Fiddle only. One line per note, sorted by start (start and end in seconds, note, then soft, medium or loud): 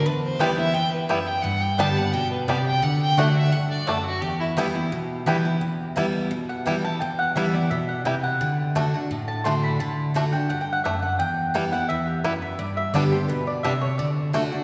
0.05 0.22 B4 medium
0.23 0.42 C5 medium
0.40 0.57 D5 medium
0.58 0.76 E5 loud
0.74 0.92 G5 loud
0.92 1.09 B4 medium
1.08 1.29 E5 medium
1.27 1.44 G5 loud
1.42 1.63 F#5 loud
1.61 1.81 G5 medium
1.79 1.99 A5 loud
1.97 2.15 F#5 loud
2.13 2.30 G5 loud
2.31 2.49 B4 medium
2.48 2.66 D5 loud
2.66 2.85 G5 loud
2.83 3.01 F#5 loud
3.01 3.20 G5 loud
3.18 3.35 F#5 loud
3.36 3.54 E5 loud
3.52 3.70 F#5 loud
3.70 3.89 D5 medium
3.87 4.05 A4 medium
4.06 4.23 F#4 medium
4.21 4.39 G4 loud
4.40 4.50 E4 medium